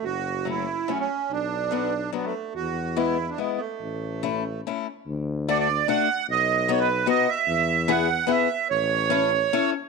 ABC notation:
X:1
M:3/4
L:1/16
Q:1/4=144
K:A
V:1 name="Accordion"
F4 E4 C C3 | D8 B, A,3 | F4 E3 D B,2 A,2- | A,8 z4 |
[K:D] z4 d d3 f4 | ^d4 c B3 d2 e2- | e4 f4 e4 | c8- c2 z2 |]
V:2 name="Steel-string acoustic guitar"
z4 [F,A,C]2 z2 [F,A,C]2 z2 | z4 [F,B,D]2 z2 [F,B,D]2 z2 | z4 [G,B,E]2 z2 [G,B,E]2 z2 | z4 [A,CE]2 z2 [A,CE]2 z2 |
[K:D] z4 [A,DF]2 z2 [A,DF]2 z2 | z4 [B,^DF]2 z2 [B,DF]2 z2 | z4 [B,E^G]2 z2 [B,EG]2 z2 | z4 [CEA]2 z2 [CEA]2 z2 |]
V:3 name="Tuba" clef=bass
F,,,12 | B,,,12 | E,,12 | A,,,12 |
[K:D] D,,12 | B,,,12 | E,,12 | A,,,12 |]